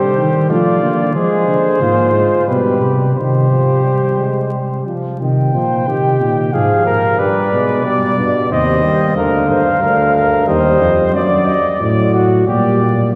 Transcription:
Already playing: tuba D3, trombone G3, flugelhorn G4, trumpet C5
0.18 tuba D#3
0.50 tuba F3, trombone A3, flugelhorn F4, trumpet D5
0.82 tuba D3, trombone A#3
1.15 tuba F3, trombone G#3, flugelhorn G#4, trumpet C5
1.48 tuba D3
1.81 tuba G#2, trombone A#3, flugelhorn F4
2.14 trombone G#3
2.48 tuba B2, trombone G3, flugelhorn G4, trumpet B4
2.81 tuba C3
3.15 tuba C3, trombone D#3, flugelhorn G4, trumpet C5
3.50 trombone F3
3.84 trombone G3
4.18 trombone G#3
4.52 trombone G3
4.86 trombone F3
5.20 tuba C3, trombone D#3, trumpet G5
5.54 tuba A#2, trombone F3, flugelhorn C5
5.87 tuba C3, trombone D#3, flugelhorn G4
6.20 tuba A#2, trombone D#3
6.53 tuba G#2, trombone F3, flugelhorn G#4, trumpet F5
6.86 tuba G#2, flugelhorn A#4
7.19 tuba G2, trombone G3, flugelhorn B4, trumpet D5
7.52 tuba B2, trombone G#3
7.85 tuba B2, trombone G3, flugelhorn D5
8.18 tuba G2, trombone B2
8.51 tuba D#2, trombone C3, trumpet C5, flugelhorn D#5
8.84 trombone G3
9.16 tuba D2, trombone D3, flugelhorn A#4, trumpet F5
9.49 tuba G2, flugelhorn C5
9.81 tuba D2, trombone D3, flugelhorn A#4
10.16 flugelhorn A#4
10.48 tuba D#2, trombone G3, flugelhorn C5, trumpet D#5
10.81 tuba F2
11.14 tuba F#2, trombone F#3, trumpet D5, flugelhorn D5
11.47 flugelhorn D#5
11.80 tuba A2, trombone F#3, flugelhorn D5
12.14 flugelhorn F#4
12.47 tuba A#2, trombone G3, flugelhorn G4, trumpet D5
12.81 flugelhorn D5

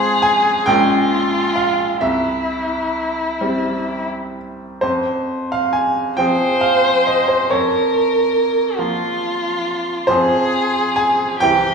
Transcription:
Already playing: grand piano F2 G#3 F4 C5, violin G#4
0.22 grand piano G#5
0.66 grand piano A#1 G#3 C#4 A#4 G5, violin F4
1.56 grand piano F5
2.01 grand piano C2 E5, violin E4
3.41 grand piano G3 C4 G4
4.81 grand piano F2 C5
5.52 grand piano F5
5.73 grand piano G#5
6.17 grand piano F3 C4 G#4 G5, violin C5
6.61 grand piano F5
7.07 grand piano D#5
7.28 grand piano C5
7.49 grand piano F2 C#5, violin A#4
8.78 grand piano F3 A#3 A#4, violin F4
10.07 grand piano F2 F3 C4 G#4 C5, violin G#4
10.96 grand piano G#5
11.40 grand piano C2 E3 C4 G4 G5, violin G4

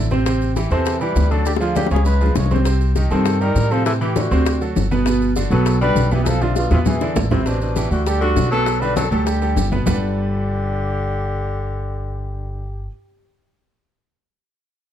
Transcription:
Already playing: upright bass A1
0.11 upright piano C3 C4 C5, high bongo, high conga, maracas
0.26 upright piano C3 C4 C5, high bongo, high conga, maracas
0.41 high bongo, high conga, maracas
0.56 upright piano E3 E4 G4, high bongo, high conga, maracas
0.71 upright bass E2, upright piano C3 C4 C5, tenor saxophone E3, trumpet A4, high bongo, maracas
0.86 high bongo, high conga, maracas
1.00 upright piano E3 E4 G4, tenor saxophone G3, trumpet B4, high conga, maracas
1.16 upright bass D2, high bongo, low bongo, high conga, maracas
1.31 upright piano D3 D4 D5, tenor saxophone F#3, trumpet A4, high bongo, maracas
1.46 tenor saxophone D3, trumpet G4, high bongo, high conga, maracas
1.56 tenor saxophone D3, high bongo
1.60 upright piano F3 F4 G#4, trumpet F4, high conga, maracas
1.75 tenor saxophone D3, trumpet G4, high bongo, high conga, maracas
1.86 high bongo
1.91 upright bass C#2, upright piano C#3 C#4 C#5, tenor saxophone F3, trumpet G#4, high conga, maracas
1.96 high bongo
2.05 tenor saxophone G#3, trumpet B4, low bongo, maracas
2.21 upright piano F3 F4 G#4, high conga, maracas
2.26 low bongo
2.35 upright bass C2, tenor saxophone G#3, trumpet C#5, low bongo, high conga, maracas
2.46 low bongo
2.51 upright piano C3 C4 C5, high conga, maracas
2.56 low bongo
2.65 upright piano C3 C4 C5, high bongo, maracas
2.81 high bongo, high conga, maracas
2.96 upright piano D#3 D#4 G4, high bongo, high conga, maracas
3.10 upright bass G2, upright piano C3 C4 C5, tenor saxophone D#3, trumpet A4, high bongo, maracas
3.26 high bongo, high conga, maracas
3.41 upright piano D#3 D#4 G4, tenor saxophone G3, trumpet A#4, high conga, maracas
3.55 upright bass A2, high bongo, low bongo, high conga, maracas
3.71 upright piano C3 C4 C5, tenor saxophone F3, trumpet A4, high bongo, maracas
3.86 tenor saxophone E3, trumpet A4, high bongo, high conga, maracas
4.01 upright piano E3 E4 G4, tenor saxophone E3, trumpet G4, high bongo, high conga, maracas
4.16 tenor saxophone D3, trumpet F#4, high bongo, high conga, maracas
4.31 upright bass D2, upright piano C3 C4 C5, high bongo, high conga, maracas
4.46 high bongo, high conga, maracas
4.61 upright piano F#3 F#4 A4, high conga, maracas
4.76 upright bass G1, high bongo, low bongo, high conga, maracas
4.91 upright piano B2 B3 B4, high bongo, high conga, maracas
5.06 upright piano B2 B3 B4, high bongo, high conga, maracas
5.21 high bongo, high conga, maracas
5.36 upright piano D3 D4 F#4, high bongo, high conga, maracas
5.50 upright bass B1, upright piano B2 B3 B4, tenor saxophone F#3, trumpet A4, high bongo, maracas
5.66 high bongo, maracas
5.81 upright piano D3 D4 F#4, tenor saxophone G3, trumpet B4, high conga, maracas
5.95 upright bass B1, high bongo, low bongo, high conga, maracas
6.11 upright piano B2 B3 B4, tenor saxophone E3, trumpet G4, high bongo, high conga, maracas
6.23 tenor saxophone E3, trumpet G#4, high bongo, high conga, maracas
6.27 tenor saxophone F3, trumpet A4
6.41 tenor saxophone C3, upright piano D3 D4 F4, trumpet F4, high bongo, high conga, maracas
6.56 tenor saxophone B2, trumpet F4, high bongo, maracas
6.71 upright bass E2, upright piano B2 B3 B4, tenor saxophone C3, trumpet F4, high bongo, low conga, maracas
6.86 tenor saxophone E3, trumpet G#4, low bongo, low conga, maracas
7.01 upright piano D3 D4 E4, low bongo, maracas
7.16 upright bass A1, low bongo, low conga, maracas
7.31 tenor saxophone C3, upright piano C3 C4 C5, trumpet E4, low bongo, low conga, maracas
7.46 tenor saxophone B2, upright piano C3 C4 C5, trumpet D4, high bongo, high conga, maracas
7.61 tenor saxophone B2, trumpet D4, high bongo, high conga, maracas
7.76 upright piano E3 E4 G4, high bongo, high conga, maracas
7.91 upright bass D2, tenor saxophone D3, trumpet F#4, high bongo, maracas
8.06 tenor saxophone D3, upright piano G3 G4 A4, trumpet G4, high bongo, high conga, maracas
8.20 tenor saxophone D3, upright piano G3 D4 A4, trumpet F#4, maracas
8.36 upright bass B1, high bongo, low bongo, high conga, maracas
8.51 upright piano B2 B3 B4, tenor saxophone F#3, trumpet A4, high bongo, maracas
8.66 high bongo, high conga, maracas
8.81 upright piano D3 D4 F#4, tenor saxophone G3, trumpet B4, high bongo, maracas
8.96 tenor saxophone F#3, trumpet A4, high bongo, high conga, maracas
9.11 upright bass D2, tenor saxophone F#3, upright piano G3 G4 A4, trumpet A4, high bongo, high conga, maracas
9.26 tenor saxophone D3, trumpet G4, high bongo, high conga, maracas
9.41 upright piano G3 G4 A4, high conga, maracas
9.56 upright bass G1, high bongo, low bongo, high conga, maracas
9.72 upright piano B2 B3 B4, high bongo, high conga, maracas
9.86 upright bass G1, tenor saxophone D3, upright piano G3 D4 G4 A4 B4 F#5, trumpet G4, low bongo, low conga, maracas

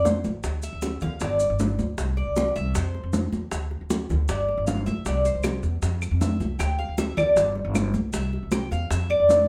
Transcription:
Already playing: upright bass F2
0.05 cuban tres C5, high bongo, low bongo, high conga, maracas
0.24 upright bass A1, high conga, maracas
0.44 upright bass D2, high bongo, high conga, maracas
0.63 cuban tres E5, high bongo, high conga, maracas
0.73 upright bass D2
0.82 high bongo, high conga, maracas
1.01 upright bass D2, cuban tres F5, high bongo, low conga, maracas
1.20 upright bass G1, cuban tres D5, high bongo, high conga, low conga, maracas
1.39 high bongo, high conga, maracas
1.50 upright bass G1
1.59 high bongo, low bongo, high conga, maracas
1.79 upright bass D2, high conga, maracas
1.98 upright bass C2, high bongo, high conga, maracas
2.17 cuban tres D5, high bongo, high conga
2.27 upright bass C2
2.36 high bongo, high conga, maracas
2.56 upright bass C2, cuban tres E5, high bongo, high conga, maracas
2.75 upright bass F2, cuban tres C5, high bongo, high conga, maracas
2.94 high bongo, high conga
3.03 upright bass F2
3.13 high bongo, low bongo, high conga, maracas
3.32 upright bass E2, high conga, maracas
3.51 upright bass D2, high bongo, high conga, maracas
3.71 high bongo, high conga
3.81 upright bass D2
3.90 high bongo, high conga, maracas
4.10 upright bass D2, high bongo, low conga, maracas
4.28 upright bass G1, cuban tres D5, high bongo, high conga, maracas
4.49 high bongo, high conga
4.57 upright bass G1
4.67 cuban tres F5, high bongo, low bongo, high conga, maracas
4.86 upright bass B1, cuban tres E5, high conga, maracas
5.05 upright bass C2, cuban tres D5, high bongo, high conga, maracas
5.25 cuban tres C5, high bongo, high conga, maracas
5.35 upright bass C2
5.43 high bongo, high conga, claves, maracas
5.63 upright bass E2, high bongo, high conga, maracas
5.82 upright bass F2, high bongo, high conga, maracas
6.02 high bongo, high conga, claves, maracas
6.11 upright bass F2
6.21 cuban tres E5, high bongo, low bongo, high conga, maracas
6.40 upright bass C2, high conga, maracas
6.59 upright bass D2, cuban tres G5, high bongo, high conga, claves, maracas
6.79 cuban tres F5, high bongo, high conga
6.88 upright bass D2
6.98 cuban tres E5, high bongo, high conga, maracas
7.17 upright bass D2, cuban tres D5, high bongo, low conga, claves, maracas
7.36 upright bass G1, high bongo, high conga, low conga, maracas
7.55 high bongo, high conga
7.65 upright bass G1
7.75 high bongo, low bongo, high conga, claves, maracas
7.94 upright bass B1, high conga, maracas
8.13 upright bass C2, cuban tres E5, high bongo, high conga, maracas
8.33 high bongo, high conga
8.43 upright bass C2
8.52 cuban tres G5, high bongo, high conga, claves, maracas
8.71 upright bass E2, cuban tres F5, high bongo, high conga, maracas
8.90 upright bass F2, cuban tres E5, high bongo, high conga, maracas
9.10 cuban tres D5, high bongo, high conga, claves
9.20 upright bass F2
9.29 high bongo, low bongo, high conga, maracas

